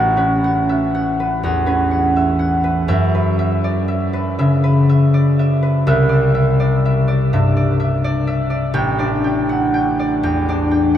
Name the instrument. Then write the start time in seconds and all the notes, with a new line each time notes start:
harp
Already playing: A1 E4 F#4 B4 E5 F#5
0.17 C#4 B4
0.44 F#5
0.69 E5
0.95 F#5
1.20 B4
1.43 E2 F#5
1.66 C#4 B4
1.91 F#5
2.16 E5
2.39 F#5
2.64 B4
2.88 F#2 E5
3.15 B4
3.39 E5
3.64 D5
3.88 E5
4.13 B4
4.39 C#3 E5
4.64 B4
4.89 E5
5.14 D5
5.39 E5
5.63 B4
5.87 C2 E5
6.09 D5
6.35 E5
6.60 D5
6.85 E5
7.08 D5
7.33 G2 E5
7.57 D5
7.80 E5
8.04 D5
8.27 E5
8.50 D5
8.74 A1 G5
8.99 D4 D5
9.24 G5
9.49 F#5
9.74 G5
9.99 D5
10.23 E2 G5
10.49 D4 D5
10.71 G5